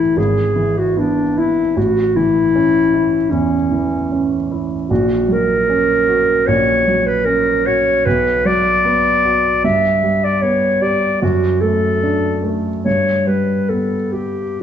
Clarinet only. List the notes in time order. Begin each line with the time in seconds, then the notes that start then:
Already playing: E4
0.17 G#4
0.78 F#4
0.98 D4
1.39 E4
1.77 F#4
2.16 E4
3.30 C#4
4.89 F#4
5.32 A#4
6.47 C#5
7.06 B4
7.25 A#4
7.66 C#5
8.05 B4
8.46 D5
9.64 E5
10.24 D5
10.42 C#5
10.82 D5
11.22 F#4
11.61 A4
12.85 C#5
13.27 B4
13.69 A4
14.12 G4